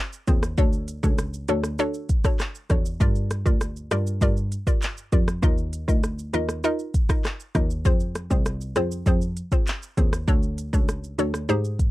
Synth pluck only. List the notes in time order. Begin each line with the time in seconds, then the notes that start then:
0.27 C4 F4 G#4 C5
0.58 D4 F#4 A4 C#5
1.03 D4 F#4 A4 C#5
1.49 D4 F#4 A4 C#5
1.79 D4 F#4 A4 C#5
2.24 D4 F#4 A4 C#5
2.70 D4 F#4 A4 C#5
3.00 F4 G4 A#4 D5
3.46 F4 G4 A#4 D5
3.91 F4 G4 A#4 D5
4.22 F4 G4 A#4 D5
4.67 F4 G4 A#4 D5
5.12 F4 G4 A#4 D5
5.43 D#4 F4 A#4 D#5
5.88 D#4 F4 A#4 D#5
6.33 D#4 F4 A#4 D#5
6.64 D#4 F4 A#4 D#5
7.09 D#4 F4 A#4 D#5
7.55 D#4 F4 A#4 D#5
7.85 C4 F4 G#4 C5
8.31 C4 F4 G#4 C5
8.76 C4 F4 G#4 C5
9.06 C4 F4 G#4 C5
9.52 C4 F4 G#4 C5
9.97 C4 F4 G#4 C5
10.28 D4 F#4 A4 C#5
10.73 D4 F#4 A4 C#5
11.19 D4 F#4 A4 C#5
11.49 D#4 G4 G#4 C5